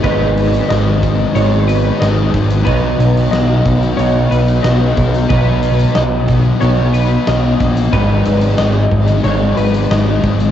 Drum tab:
HH |x-xxx-x-x-x-x-xx|x-xxx-xxx-xxx-xx|x-xxx-x-x-x-x-xx|x-xxx-xxx-xxx-xx|
SD |----o-------o---|----o-------o---|----o-------o---|----o-------o---|
BD |o-----o-------o-|o-----o-------o-|o-----o-------o-|o-----o-------o-|